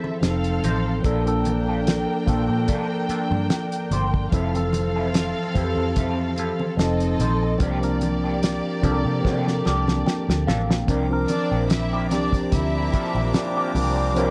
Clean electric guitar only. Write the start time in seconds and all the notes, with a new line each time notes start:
0.04 muted clean electric guitar stroke
0.23 muted clean electric guitar stroke
0.64 F3 C4 D#4 C5
0.86 muted clean electric guitar stroke
1.05 A3 D4 F4 A4
1.27 muted clean electric guitar stroke
1.46 muted clean electric guitar stroke
1.69 A3 D4 F4 A4
1.87 muted clean electric guitar stroke
2.28 A3 D4 F4 A4
2.49 muted clean electric guitar stroke
2.68 A3 D4 F4 A4
2.91 muted clean electric guitar stroke
3.10 A3 D4 F4 A4
3.31 muted clean electric guitar stroke
3.50 muted clean electric guitar stroke
3.92 A3 D4 F4 C5
4.13 muted clean electric guitar stroke
4.32 F3 C4 E4 A4
4.55 muted clean electric guitar stroke
4.74 muted clean electric guitar stroke
4.96 F3 C4 E4 A4
5.16 muted clean electric guitar stroke
5.56 F3 C4 E4 A4
5.78 muted clean electric guitar stroke
5.97 F3 C4 E4 A4
6.20 muted clean electric guitar stroke
6.38 F3 C4 E4 A4
6.61 muted clean electric guitar stroke
6.79 muted clean electric guitar stroke
7.20 F3 C4 D#4 C5
7.43 muted clean electric guitar stroke
7.62 F3 A#3 D4 G4
7.84 muted clean electric guitar stroke
8.02 muted clean electric guitar stroke
8.24 F3 A#3 D4 G4
8.43 muted clean electric guitar stroke
8.84 F3 A#3 D4 G4
9.06 muted clean electric guitar stroke
9.25 F3 A#3 D4 G4
9.47 muted clean electric guitar stroke
9.66 F3 A#3 D4 G4
9.88 muted clean electric guitar stroke
10.07 muted clean electric guitar stroke
10.48 F3 A#3 D4 A4
10.70 muted clean electric guitar stroke
10.89 F3 A#3 D4 G4
11.30 muted clean electric guitar stroke
11.52 F3 A#3 D4 G4
11.71 muted clean electric guitar stroke
11.93 F3 A#3 D4 G4
12.12 muted clean electric guitar stroke
12.34 muted clean electric guitar stroke
12.53 muted clean electric guitar stroke
12.75 muted clean electric guitar stroke
12.94 F3 A#3 D4 A4
13.16 muted clean electric guitar stroke
13.35 muted clean electric guitar stroke
13.57 F3 A#3 D4 G4
13.76 muted clean electric guitar stroke
13.98 muted clean electric guitar stroke
14.16 F3 A#3 D4 G4